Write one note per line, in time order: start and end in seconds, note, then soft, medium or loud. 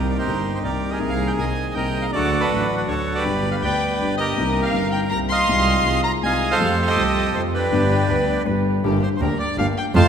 0.00 0.25 C2 medium
0.00 0.25 C3 medium
0.00 0.23 D#3 medium
0.00 0.24 A#3 medium
0.00 0.25 A#3 medium
0.00 0.25 C4 medium
0.00 0.26 C4 soft
0.00 0.26 D#4 medium
0.00 0.18 G4 medium
0.00 0.26 G4 medium
0.00 0.42 A#4 medium
0.10 0.18 D5 medium
0.18 0.71 D#4 medium
0.18 0.63 G4 medium
0.18 0.54 C5 medium
0.24 0.62 G1 medium
0.24 0.62 G1 soft
0.24 0.63 G2 soft
0.24 0.60 D#3 soft
0.24 0.62 A#3 soft
0.24 0.63 A#3 soft
0.24 0.63 C4 soft
0.24 0.63 D#4 soft
0.24 0.63 G4 soft
0.55 0.59 C5 medium
0.62 1.00 C2 medium
0.62 0.99 C2 soft
0.62 0.99 C3 soft
0.62 0.97 D#3 soft
0.62 0.98 A#3 soft
0.62 1.00 A#3 soft
0.62 0.99 C4 soft
0.62 1.00 C4 soft
0.62 1.00 D#4 soft
0.62 0.99 G4 medium
0.62 0.91 A#4 medium
0.62 0.90 D5 medium
0.66 1.01 G4 soft
0.90 1.44 G#4 medium
0.90 1.45 A#4 medium
0.90 0.99 D#5 medium
0.98 1.37 C2 medium
0.98 1.36 C3 medium
0.98 1.35 D#3 medium
0.98 1.36 A#3 soft
0.98 1.37 A#3 medium
0.98 1.37 C4 medium
0.98 1.37 G#4 medium
1.02 1.38 G#4 medium
1.09 1.27 F5 medium
1.27 1.32 G5 medium
1.36 1.74 C2 soft
1.36 1.75 C2 medium
1.36 1.74 C3 soft
1.36 1.73 D#3 soft
1.36 1.74 A#3 soft
1.36 1.75 C4 soft
1.36 1.74 G#4 soft
1.36 1.74 G#5 medium
1.41 1.75 D#5 medium
1.74 2.12 C2 soft
1.74 2.12 C2 medium
1.74 2.12 C3 soft
1.74 2.11 D#3 soft
1.74 2.11 A#3 soft
1.74 2.11 C4 soft
1.74 2.12 C4 soft
1.74 2.11 G#4 medium
1.74 2.13 G#4 soft
1.74 2.11 A#4 medium
1.74 2.11 D#5 medium
1.74 2.04 G5 medium
2.02 2.06 F5 medium
2.12 2.49 D2 medium
2.12 2.13 D3 medium
2.12 2.49 D3 medium
2.12 2.49 F#3 soft
2.12 2.49 A3 medium
2.12 2.49 D4 medium
2.12 2.49 F#4 medium
2.12 2.41 F#4 medium
2.12 2.66 A4 medium
2.12 2.42 D5 loud
2.16 2.50 F#4 medium
2.40 2.94 D4 medium
2.40 2.89 F#4 medium
2.40 2.76 B4 medium
2.50 2.86 A1 medium
2.50 2.87 A1 soft
2.50 2.87 A2 soft
2.50 2.86 D3 soft
2.50 2.86 F#3 soft
2.50 2.86 A3 soft
2.50 2.87 A3 soft
2.50 2.86 D4 soft
2.50 2.86 F#4 soft
2.77 2.82 B4 medium
2.87 3.24 D2 medium
2.87 3.24 D2 soft
2.87 3.23 D3 medium
2.87 3.24 F#3 soft
2.87 3.24 A3 soft
2.87 3.25 A3 soft
2.87 3.24 D4 soft
2.87 3.24 F#4 medium
2.87 3.24 A4 medium
2.87 3.14 C#5 medium
2.92 3.25 F#4 soft
3.15 3.69 G4 medium
3.15 3.63 B4 medium
3.15 3.50 D5 medium
3.24 3.61 G1 medium
3.24 3.61 G2 medium
3.24 3.60 D3 medium
3.24 3.61 G3 medium
3.24 3.61 B3 medium
3.24 3.61 B3 soft
3.24 3.61 D4 medium
3.24 3.61 G4 medium
3.24 3.62 G4 medium
3.51 3.56 F5 medium
3.62 3.98 D2 medium
3.62 3.99 D2 soft
3.62 3.98 D3 soft
3.62 3.99 G3 soft
3.62 3.98 B3 soft
3.62 3.99 B3 soft
3.62 3.99 D4 soft
3.62 3.99 G4 soft
3.62 4.16 B4 medium
3.62 4.16 D5 medium
3.62 3.97 G5 medium
3.66 4.00 G4 soft
3.99 4.35 G1 medium
3.99 4.36 G1 soft
3.99 4.36 G2 soft
3.99 4.35 D3 soft
3.99 4.36 G3 soft
3.99 4.36 B3 soft
3.99 4.36 D4 soft
3.99 4.36 G4 medium
4.03 4.37 G4 soft
4.17 4.72 G4 medium
4.17 4.64 A#4 medium
4.17 4.61 D#5 medium
4.35 4.72 C2 medium
4.35 4.73 C2 medium
4.35 4.73 C3 medium
4.35 4.70 D#3 medium
4.35 4.71 A#3 medium
4.35 4.73 C4 medium
4.35 4.73 D#4 medium
4.35 4.74 G4 medium
4.35 4.73 A#4 medium
4.63 5.18 A#4 medium
4.63 4.90 F5 medium
4.71 5.10 G1 soft
4.71 5.10 G1 medium
4.71 5.10 G2 soft
4.71 5.07 D#3 soft
4.71 5.09 A#3 soft
4.71 5.10 C4 soft
4.71 5.10 D#4 soft
4.71 5.10 A#4 soft
4.76 5.11 G4 soft
4.91 5.00 G5 medium
4.91 5.01 G5 medium
5.09 5.47 C2 soft
5.09 5.47 C2 medium
5.09 5.47 C3 soft
5.09 5.45 D#3 soft
5.09 5.47 A#3 soft
5.09 5.47 C4 soft
5.09 5.47 D#4 soft
5.09 5.47 A#4 medium
5.09 5.18 A#5 medium
5.09 5.20 A#5 loud
5.13 5.48 G4 soft
5.28 6.02 D#5 medium
5.28 6.01 F5 medium
5.28 6.00 C6 loud
5.47 5.84 C2 medium
5.47 5.84 C3 medium
5.47 5.82 D#3 medium
5.47 5.83 G#3 medium
5.47 5.84 C4 medium
5.47 5.84 F4 medium
5.47 5.84 G#4 medium
5.51 5.85 F4 medium
5.83 6.21 C2 medium
5.83 6.21 C2 soft
5.83 6.21 C3 soft
5.83 6.20 D#3 soft
5.83 6.21 G#3 soft
5.83 6.21 C4 soft
5.83 6.21 F4 soft
5.83 6.22 F4 soft
5.83 6.21 G#4 medium
6.03 6.12 A#5 medium
6.03 6.12 A#5 loud
6.22 6.58 C2 soft
6.22 6.58 C2 medium
6.22 6.58 C3 soft
6.22 6.58 D#3 soft
6.22 6.58 G#3 soft
6.22 6.58 C4 soft
6.22 6.59 C4 soft
6.22 6.58 F4 soft
6.22 6.59 F4 soft
6.22 6.58 G#4 medium
6.22 6.59 D#5 medium
6.22 6.49 F5 medium
6.22 6.52 G#5 loud
6.22 6.49 G#5 medium
6.50 6.89 A4 medium
6.50 7.03 C5 medium
6.50 6.79 F5 medium
6.50 6.79 F5 loud
6.59 6.95 F2 medium
6.59 6.93 F3 medium
6.59 6.95 A3 soft
6.59 6.95 A3 medium
6.59 6.96 C4 medium
6.59 6.96 F4 medium
6.59 6.96 G4 medium
6.82 6.86 F5 medium
6.82 6.89 F5 medium
6.86 7.41 G4 medium
6.86 7.41 A4 medium
6.86 7.30 D#5 medium
6.86 7.36 D#5 loud
6.95 7.32 C2 soft
6.95 7.32 C2 medium
6.95 7.32 C3 soft
6.95 7.31 F3 soft
6.95 7.32 A3 soft
6.95 7.33 C4 soft
6.95 7.33 F4 soft
6.95 7.33 G4 medium
7.34 7.70 F2 medium
7.34 7.70 F2 soft
7.34 7.70 F3 medium
7.34 7.70 A3 soft
7.34 7.70 A3 medium
7.34 7.71 C4 soft
7.34 7.70 F4 medium
7.34 7.70 G4 medium
7.34 7.42 C5 medium
7.38 7.71 G4 soft
7.53 8.43 D4 medium
7.53 8.43 G4 medium
7.53 8.42 B4 medium
7.70 8.07 G1 medium
7.70 8.07 G2 medium
7.70 8.06 D3 medium
7.70 8.07 G3 medium
7.70 8.07 B3 medium
7.70 8.08 B3 medium
7.70 8.07 D4 medium
7.70 8.07 G4 medium
7.75 8.08 G4 medium
7.90 8.12 G4 medium
8.07 8.44 D2 medium
8.07 8.44 D2 soft
8.07 8.09 D3 soft
8.07 8.43 D3 soft
8.07 8.44 G3 soft
8.07 8.44 B3 soft
8.07 8.45 B3 soft
8.07 8.44 D4 soft
8.07 8.44 G4 medium
8.07 8.45 G4 soft
8.07 8.28 B4 loud
8.28 8.48 D5 loud
8.45 8.81 G1 medium
8.45 8.82 G1 medium
8.45 8.82 G2 medium
8.45 8.81 D3 soft
8.45 8.81 G3 soft
8.45 8.81 B3 medium
8.45 8.82 B3 soft
8.45 8.81 D4 soft
8.45 8.81 G4 medium
8.45 8.83 G4 soft
8.45 8.83 B4 medium
8.83 8.99 G1 loud
8.83 8.99 G1 medium
8.83 8.99 G2 medium
8.83 8.99 D3 medium
8.83 8.99 G3 medium
8.83 8.99 A#3 medium
8.83 8.99 D4 medium
8.83 8.99 G4 medium
9.02 9.08 C5 medium
9.02 9.09 C5 medium
9.16 9.20 C5 medium
9.16 9.21 C5 medium
9.20 9.36 D2 medium
9.20 9.37 D2 medium
9.20 9.37 D3 medium
9.20 9.36 G3 soft
9.20 9.36 A#3 medium
9.20 9.37 A#3 soft
9.20 9.36 D4 medium
9.20 9.36 G4 medium
9.20 9.37 G4 medium
9.20 9.38 A#4 medium
9.39 9.56 D5 medium
9.58 9.73 G1 medium
9.58 9.74 G1 medium
9.58 9.74 G2 medium
9.58 9.74 D3 medium
9.58 9.74 G3 soft
9.58 9.74 A#3 medium
9.58 9.74 D4 medium
9.58 9.74 G4 medium
9.58 9.66 F5 medium
9.58 9.67 F5 medium
9.77 9.85 G5 medium
9.77 9.86 G5 medium
9.95 10.08 F2 loud
9.95 10.08 F2 medium
9.95 10.08 C3 medium
9.95 10.08 F3 medium
9.95 10.08 A3 medium
9.95 10.08 C4 medium
9.95 10.08 F4 medium
9.95 10.08 C5 medium
9.95 10.08 F5 medium
9.95 10.08 A5 loud